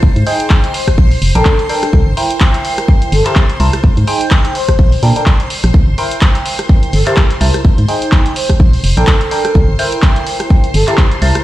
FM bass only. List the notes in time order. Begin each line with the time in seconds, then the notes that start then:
0.03 G#1
0.16 G#2
0.98 A#1
1.22 F1
1.35 A#1
1.93 C2
2.07 G1
3.12 G1
3.60 C2
3.84 G#1
3.97 G#2
4.79 A#1
5.03 A#2
5.64 A#1
5.74 C2
5.88 G1
6.93 G1
7.41 C2
7.65 G#1
7.78 G#2
8.60 A#1
8.84 F1
8.97 A#1
9.55 C2
9.69 G1
10.74 G1
11.22 C2